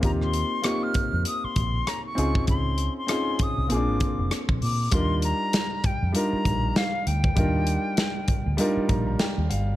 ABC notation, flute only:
X:1
M:4/4
L:1/16
Q:"Swing 16ths" 1/4=98
K:Ebmix
V:1 name="Flute"
b c'3 d' f'3 e' c'3 b d'3 | c'3 c'3 e'2 =d'4 z2 d'2 | [K:Eb] c'2 b4 g2 b4 f2 g2- | g8- g2 z6 |]